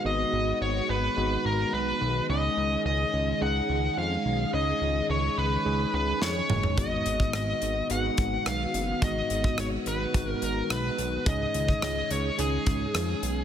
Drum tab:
HH |----------------|----------------|----------------|x-x-x-x-x-x-x-x-|
SD |----------------|----------------|------------o---|----r-------r---|
T2 |----------------|----------------|--------------o-|----------------|
FT |----------------|----------------|---------------o|----------------|
BD |----------------|----------------|----------------|o--o------o-----|

HH |x-x-x-x-x-x-x-x-|x-x-x-x-x-x-x-x-|
SD |----r-------r---|----r-------r---|
T2 |----------------|----------------|
FT |----------------|----------------|
BD |o--o----o-------|o--o------o-----|